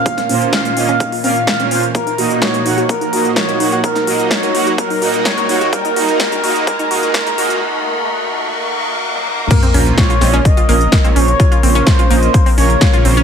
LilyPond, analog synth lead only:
\new Staff \with { instrumentName = "Analog synth lead" } { \time 4/4 \key bes \minor \tempo 4 = 127 f''4 f''4. f''4. | bes'4 des''4 bes'4 des''4 | bes'4 des''4 bes'4 des''4 | bes'4 bes'4 bes'4 bes'4 |
r1 | bes'4 des''4 ees''4. des''8~ | des''4 c''4. des''4. | }